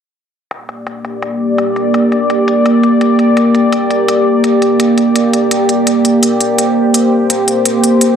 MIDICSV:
0, 0, Header, 1, 3, 480
1, 0, Start_track
1, 0, Key_signature, -2, "minor"
1, 0, Tempo, 357143
1, 691, Time_signature, 4, 2, 24, 8
1, 10967, End_track
2, 0, Start_track
2, 0, Title_t, "Ambient pad"
2, 0, Program_c, 0, 92
2, 687, Note_on_c, 0, 58, 76
2, 688, Note_on_c, 0, 74, 81
2, 690, Note_on_c, 0, 67, 67
2, 8315, Note_off_c, 0, 74, 0
2, 8364, Note_on_c, 0, 72, 81
2, 10967, Note_off_c, 0, 58, 0
2, 10967, Note_off_c, 0, 67, 0
2, 10967, Note_off_c, 0, 72, 0
2, 10967, End_track
3, 0, Start_track
3, 0, Title_t, "Drums"
3, 687, Note_on_c, 9, 42, 74
3, 821, Note_off_c, 9, 42, 0
3, 926, Note_on_c, 9, 42, 33
3, 1060, Note_off_c, 9, 42, 0
3, 1165, Note_on_c, 9, 42, 60
3, 1299, Note_off_c, 9, 42, 0
3, 1407, Note_on_c, 9, 42, 34
3, 1541, Note_off_c, 9, 42, 0
3, 1646, Note_on_c, 9, 42, 72
3, 1781, Note_off_c, 9, 42, 0
3, 2128, Note_on_c, 9, 42, 60
3, 2262, Note_off_c, 9, 42, 0
3, 2368, Note_on_c, 9, 42, 33
3, 2503, Note_off_c, 9, 42, 0
3, 2609, Note_on_c, 9, 42, 73
3, 2744, Note_off_c, 9, 42, 0
3, 2850, Note_on_c, 9, 42, 34
3, 2985, Note_off_c, 9, 42, 0
3, 3091, Note_on_c, 9, 42, 60
3, 3225, Note_off_c, 9, 42, 0
3, 3331, Note_on_c, 9, 42, 35
3, 3465, Note_off_c, 9, 42, 0
3, 3570, Note_on_c, 9, 42, 73
3, 3704, Note_off_c, 9, 42, 0
3, 3810, Note_on_c, 9, 42, 34
3, 3944, Note_off_c, 9, 42, 0
3, 4047, Note_on_c, 9, 42, 60
3, 4182, Note_off_c, 9, 42, 0
3, 4287, Note_on_c, 9, 42, 33
3, 4421, Note_off_c, 9, 42, 0
3, 4528, Note_on_c, 9, 42, 75
3, 4662, Note_off_c, 9, 42, 0
3, 4766, Note_on_c, 9, 42, 33
3, 4900, Note_off_c, 9, 42, 0
3, 5006, Note_on_c, 9, 42, 59
3, 5141, Note_off_c, 9, 42, 0
3, 5249, Note_on_c, 9, 42, 34
3, 5383, Note_off_c, 9, 42, 0
3, 5489, Note_on_c, 9, 42, 71
3, 5624, Note_off_c, 9, 42, 0
3, 5966, Note_on_c, 9, 42, 58
3, 6101, Note_off_c, 9, 42, 0
3, 6209, Note_on_c, 9, 42, 33
3, 6344, Note_off_c, 9, 42, 0
3, 6447, Note_on_c, 9, 42, 71
3, 6582, Note_off_c, 9, 42, 0
3, 6688, Note_on_c, 9, 42, 33
3, 6822, Note_off_c, 9, 42, 0
3, 6929, Note_on_c, 9, 42, 58
3, 7064, Note_off_c, 9, 42, 0
3, 7170, Note_on_c, 9, 42, 34
3, 7304, Note_off_c, 9, 42, 0
3, 7408, Note_on_c, 9, 42, 68
3, 7543, Note_off_c, 9, 42, 0
3, 7648, Note_on_c, 9, 42, 32
3, 7782, Note_off_c, 9, 42, 0
3, 7888, Note_on_c, 9, 42, 56
3, 8022, Note_off_c, 9, 42, 0
3, 8129, Note_on_c, 9, 42, 32
3, 8264, Note_off_c, 9, 42, 0
3, 8369, Note_on_c, 9, 42, 71
3, 8504, Note_off_c, 9, 42, 0
3, 8608, Note_on_c, 9, 42, 32
3, 8743, Note_off_c, 9, 42, 0
3, 8850, Note_on_c, 9, 42, 57
3, 8984, Note_off_c, 9, 42, 0
3, 9330, Note_on_c, 9, 42, 69
3, 9465, Note_off_c, 9, 42, 0
3, 9810, Note_on_c, 9, 42, 55
3, 9945, Note_off_c, 9, 42, 0
3, 10050, Note_on_c, 9, 42, 31
3, 10185, Note_off_c, 9, 42, 0
3, 10288, Note_on_c, 9, 42, 70
3, 10422, Note_off_c, 9, 42, 0
3, 10531, Note_on_c, 9, 42, 33
3, 10665, Note_off_c, 9, 42, 0
3, 10768, Note_on_c, 9, 42, 59
3, 10903, Note_off_c, 9, 42, 0
3, 10967, End_track
0, 0, End_of_file